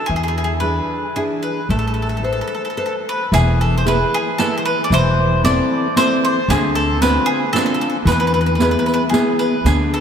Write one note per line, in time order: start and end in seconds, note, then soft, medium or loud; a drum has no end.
0.06 0.79 E2 medium
0.06 0.61 E3 medium
0.06 0.14 G#4 medium
0.16 0.22 G#4 medium
0.23 0.27 G#4 soft
0.28 0.37 G#4 medium
0.38 0.43 G#4 medium
0.44 0.52 G#4 medium
0.60 1.04 D4 soft
0.60 1.05 E4 soft
0.60 1.05 G#4 soft
0.60 1.16 B4 medium
1.16 1.59 D4 soft
1.16 1.59 E4 soft
1.16 1.23 G#4 medium
1.16 1.59 G#4 soft
1.43 1.67 B4 medium
1.69 2.40 A1 medium
1.69 2.22 A3 soft
1.69 1.77 A4 medium
1.79 1.85 A4 soft
1.87 1.93 A4 soft
1.94 2.00 A4 soft
2.02 2.08 A4 soft
2.09 2.16 A4 soft
2.17 2.23 A4 soft
2.22 2.67 A4 soft
2.22 2.31 A4 soft
2.22 2.67 B4 soft
2.22 2.67 C5 soft
2.33 2.39 A4 soft
2.41 2.46 A4 soft
2.47 2.53 A4 soft
2.55 2.61 A4 soft
2.65 2.69 A4 soft
2.70 2.76 A4 soft
2.77 2.84 A4 medium
2.77 3.21 A4 soft
2.77 3.21 B4 soft
2.77 3.22 C5 soft
2.86 2.93 A4 soft
3.09 3.32 B4 medium
3.32 4.01 E1 medium
3.32 3.84 E3 medium
3.32 3.58 G#4 medium
3.32 riq medium
3.61 3.77 A4 medium
3.78 3.85 C5 medium
3.86 4.28 E4 soft
3.86 4.28 G#4 soft
3.86 4.29 B4 soft
3.86 4.15 B4 medium
3.86 riq soft
4.14 4.41 G#4 medium
4.38 4.81 E4 soft
4.38 4.81 G#4 soft
4.38 4.57 A4 medium
4.38 4.82 B4 soft
4.38 riq medium
4.58 4.65 C5 medium
4.65 4.84 B4 medium
4.84 4.91 D5 medium
4.90 5.59 E1 medium
4.90 5.42 E3 medium
4.90 5.41 C5 medium
4.90 riq soft
5.44 5.86 C4 soft
5.44 5.86 E4 soft
5.44 5.86 A4 soft
5.44 5.97 D5 medium
5.44 riq soft
5.96 6.38 C4 medium
5.96 6.38 E4 soft
5.96 6.39 A4 soft
5.96 6.23 C5 loud
5.96 riq medium
6.25 6.50 C5 medium
6.48 7.16 D2 medium
6.48 6.99 D3 medium
6.48 6.74 G#4 medium
6.48 riq medium
6.75 6.99 A4 medium
7.01 7.43 C4 soft
7.01 7.44 D4 soft
7.01 7.44 F4 soft
7.01 7.26 B4 medium
7.01 riq medium
7.26 7.50 G#4 medium
7.53 7.95 C4 soft
7.53 7.96 D4 soft
7.53 7.95 F4 soft
7.53 7.57 A4 medium
7.53 riq medium
7.59 7.65 A4 medium
7.66 7.73 A4 medium
7.74 7.80 A4 soft
7.81 7.88 A4 medium
7.90 7.97 A4 soft
8.05 8.75 E2 medium
8.05 8.57 E3 medium
8.05 8.11 B4 medium
8.05 riq medium
8.12 8.19 B4 medium
8.20 8.26 B4 medium
8.27 8.33 B4 medium
8.34 8.40 B4 medium
8.41 8.45 B4 soft
8.46 8.54 B4 soft
8.55 9.01 B3 soft
8.55 8.61 B4 soft
8.60 9.02 E4 soft
8.60 9.02 G#4 soft
8.60 8.70 B4 medium
8.60 riq soft
8.71 8.78 B4 medium
8.79 8.85 B4 medium
8.86 8.92 B4 medium
8.86 riq soft
8.94 9.02 B4 medium
9.10 9.54 B3 soft
9.10 9.54 E4 soft
9.10 9.36 G#4 medium
9.10 9.55 G#4 soft
9.14 riq medium
9.39 9.66 B4 medium
9.39 riq soft
9.64 10.00 D2 medium
9.64 10.00 D3 medium
9.64 9.91 G#4 medium
9.64 riq medium
9.94 10.00 A4 medium